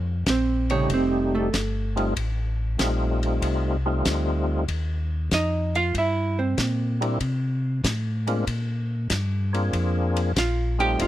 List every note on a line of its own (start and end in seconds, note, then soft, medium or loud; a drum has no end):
0.00 0.24 F2 medium
0.26 0.88 A#1 medium
0.26 0.70 C4 medium
0.26 0.70 C5 medium
0.26 kick soft
0.26 snare medium
0.26 hi-hat pedal medium
0.26 ride medium
0.70 1.49 C3 medium
0.70 0.90 C#3 medium
0.70 1.49 G3 medium
0.70 1.49 A3 medium
0.70 1.49 D#4 medium
0.70 1.50 G4 medium
0.70 0.89 C#5 loud
0.70 ride soft
0.90 1.51 F1 medium
0.90 1.34 C4 medium
0.90 kick soft
0.90 ride medium
0.94 1.34 C5 medium
1.35 2.13 A3 medium
1.35 2.13 A4 medium
1.53 2.14 G1 medium
1.53 kick soft
1.53 snare medium
1.53 hi-hat pedal medium
1.53 ride medium
1.96 2.14 G3 medium
1.96 2.14 A3 medium
1.96 2.14 C4 medium
1.96 2.14 D#4 medium
1.96 2.14 F4 medium
1.96 ride soft
2.16 2.77 A1 medium
2.16 kick soft
2.16 ride medium
2.78 3.40 A#1 medium
2.78 3.77 G3 medium
2.78 3.77 A3 medium
2.78 3.77 C4 medium
2.78 3.77 D#4 medium
2.78 3.77 F4 medium
2.78 kick soft
2.78 snare medium
2.78 hi-hat pedal medium
2.78 ride medium
3.23 ride soft
3.42 4.03 C2 medium
3.42 kick soft
3.42 ride medium
3.86 4.64 G3 medium
3.86 4.64 A3 medium
3.86 4.64 C4 medium
3.86 4.64 D#4 medium
3.86 4.65 F4 medium
4.05 4.66 D2 medium
4.05 kick soft
4.05 snare medium
4.05 hi-hat pedal medium
4.05 ride medium
4.68 5.30 D#2 medium
4.68 kick soft
4.68 ride medium
5.31 5.93 F2 medium
5.31 5.75 D#4 medium
5.31 5.75 D#5 medium
5.31 kick soft
5.31 snare medium
5.31 hi-hat pedal medium
5.31 ride medium
5.75 5.95 F4 medium
5.75 5.94 F5 loud
5.75 ride soft
5.95 6.56 G2 medium
5.95 6.38 E5 medium
5.95 kick soft
5.95 ride medium
5.99 6.39 E4 medium
6.39 7.17 C4 soft
6.39 7.17 C5 medium
6.58 7.19 A#2 medium
6.58 kick soft
6.58 snare medium
6.58 hi-hat pedal medium
6.58 ride medium
7.01 7.18 G3 medium
7.01 7.19 A#3 medium
7.01 7.19 C4 medium
7.01 7.19 D4 medium
7.01 7.19 E4 medium
7.01 ride soft
7.20 7.82 C3 medium
7.20 kick soft
7.20 ride medium
7.84 8.45 A2 medium
7.84 kick soft
7.84 snare medium
7.84 hi-hat pedal medium
7.84 ride medium
8.27 8.45 G#3 medium
8.27 8.45 A#3 medium
8.27 8.45 C4 medium
8.27 8.45 D4 medium
8.27 8.45 F4 medium
8.27 ride soft
8.47 9.08 A#2 medium
8.47 kick soft
8.47 ride medium
9.10 9.71 G2 medium
9.10 kick soft
9.10 snare medium
9.10 hi-hat pedal medium
9.10 ride medium
9.53 10.32 A#3 medium
9.53 10.32 C4 medium
9.53 10.32 D4 medium
9.53 10.32 F4 medium
9.53 10.32 G#4 medium
9.53 ride soft
9.73 10.34 F2 medium
9.73 kick soft
9.73 ride medium
10.17 ride medium
10.36 10.97 A#1 medium
10.36 10.79 F4 medium
10.36 10.79 F5 medium
10.36 kick soft
10.36 snare medium
10.36 hi-hat pedal medium
10.36 ride medium
10.79 11.07 G3 medium
10.79 11.07 A3 medium
10.79 11.07 C4 medium
10.79 11.07 D#4 medium
10.79 11.07 F4 medium
10.79 10.99 G4 loud
10.79 10.99 G5 loud
10.79 ride soft
10.99 11.07 F1 medium
10.99 11.07 F4 medium
10.99 11.07 F5 medium
10.99 kick soft
10.99 ride medium